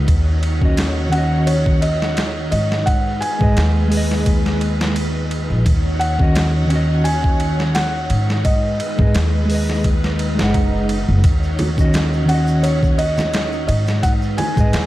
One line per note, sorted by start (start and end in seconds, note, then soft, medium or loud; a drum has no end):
0.00 5.62 D#4 medium
0.08 2.49 D#2 medium
0.08 2.84 C#5 medium
0.08 2.84 F#5 medium
0.08 kick loud
0.08 ride medium
0.43 ride medium
0.61 1.08 D#3 medium
0.61 1.09 C#4 medium
0.61 1.10 F#4 medium
0.61 kick medium
0.65 1.10 D#5 medium
0.77 snare loud
0.77 ride medium
1.09 2.83 D#3 medium
1.09 2.85 C#4 medium
1.09 1.48 F#5 medium
1.09 ride medium
1.15 2.86 F#4 medium
1.15 2.88 D#5 medium
1.47 1.83 C#5 medium
1.47 ride medium
1.66 kick loud
1.81 2.50 D#5 medium
1.81 ride medium
2.02 snare soft
2.17 snare loud
2.17 ride medium
2.51 3.19 G#2 medium
2.51 2.84 D#5 medium
2.51 ride medium
2.72 snare soft
2.86 5.63 G#3 medium
2.86 5.63 B4 medium
2.86 3.19 F#5 loud
2.86 kick loud
2.86 ride medium
3.21 4.57 G#5 loud
3.21 ride medium
3.39 3.55 G#1 medium
3.39 3.87 G#3 medium
3.39 3.88 G#4 medium
3.39 3.88 B4 medium
3.39 kick medium
3.43 3.89 D#5 medium
3.57 5.47 D#2 medium
3.57 snare loud
3.57 ride medium
3.88 5.62 G#3 medium
3.88 5.64 G#4 medium
3.88 open hi-hat medium
3.94 5.65 B4 medium
3.94 5.67 D#5 medium
4.11 snare soft
4.26 kick loud
4.26 ride medium
4.46 snare medium
4.61 ride medium
4.81 snare loud
4.96 ride medium
5.31 ride medium
5.50 5.64 A#1 medium
5.66 8.07 D#2 medium
5.66 14.86 D#4 medium
5.66 8.43 C#5 medium
5.66 8.43 F#5 medium
5.66 kick loud
5.66 ride medium
5.99 7.08 F#5 loud
5.99 ride medium
6.18 6.65 D#3 medium
6.18 6.67 C#4 medium
6.18 6.68 F#4 medium
6.18 kick loud
6.23 6.68 D#5 medium
6.35 snare loud
6.35 ride medium
6.67 8.41 D#3 medium
6.67 8.43 C#4 medium
6.67 ride medium
6.73 8.44 F#4 medium
6.73 8.46 D#5 medium
7.04 7.77 G#5 loud
7.04 ride medium
7.24 kick medium
7.40 ride medium
7.60 snare soft
7.75 8.47 F#5 loud
7.75 snare loud
7.75 ride medium
8.10 8.77 G#2 medium
8.10 ride medium
8.30 snare soft
8.45 11.21 G#3 medium
8.45 11.21 B4 medium
8.45 9.11 D#5 medium
8.45 kick loud
8.45 ride medium
8.80 ride medium
8.97 9.13 G#1 loud
8.97 9.44 G#3 medium
8.97 9.46 G#4 medium
8.97 9.47 B4 medium
8.97 kick loud
9.01 9.47 D#5 medium
9.15 10.38 D#2 medium
9.15 snare loud
9.15 ride medium
9.45 10.32 G#3 medium
9.45 10.34 G#4 medium
9.50 10.35 B4 medium
9.50 open hi-hat medium
9.54 10.37 D#5 medium
9.70 snare soft
9.84 kick loud
9.84 ride medium
9.84 swell medium
10.04 snare medium
10.19 ride medium
10.35 11.20 G#3 medium
10.35 11.22 G#4 medium
10.39 11.05 F#1 medium
10.39 11.23 B4 medium
10.39 snare loud
10.43 11.25 F#5 loud
10.54 kick medium
10.54 ride medium
10.89 ride medium
11.09 11.23 F#1 loud
11.24 13.65 D#2 medium
11.24 14.00 C#5 medium
11.24 14.01 F#5 medium
11.24 kick loud
11.24 ride medium
11.24 shaker medium
11.43 shaker soft
11.59 ride medium
11.59 low conga medium
11.76 12.24 D#3 medium
11.76 12.25 C#4 medium
11.76 12.26 F#4 medium
11.76 kick loud
11.76 shaker medium
11.81 12.26 D#5 medium
11.94 snare loud
11.94 ride medium
11.94 shaker medium
12.13 shaker soft
12.25 14.00 D#3 medium
12.25 14.01 C#4 medium
12.25 12.65 F#5 medium
12.25 ride medium
12.31 14.03 F#4 medium
12.31 14.04 D#5 medium
12.47 shaker medium
12.63 12.99 C#5 medium
12.63 ride medium
12.63 shaker medium
12.83 kick loud
12.83 shaker soft
12.98 13.66 D#5 medium
12.98 ride medium
13.18 snare soft
13.18 low conga medium
13.18 shaker medium
13.33 snare loud
13.33 ride medium
13.33 shaker medium
13.52 shaker soft
13.68 14.35 G#2 medium
13.68 13.75 D#5 medium
13.68 ride medium
13.87 snare soft
13.87 shaker medium
14.03 14.86 G#3 medium
14.03 14.86 B4 medium
14.03 14.10 F#5 loud
14.03 kick loud
14.03 ride medium
14.03 shaker medium
14.22 shaker soft
14.38 14.86 G#5 loud
14.38 ride medium
14.38 low conga medium
14.56 14.71 G#1 medium
14.56 14.86 G#3 medium
14.56 14.86 G#4 medium
14.56 14.86 B4 medium
14.56 kick medium
14.56 shaker medium
14.60 14.86 D#5 medium
14.73 14.86 D#2 medium
14.73 snare loud
14.73 ride medium
14.73 shaker medium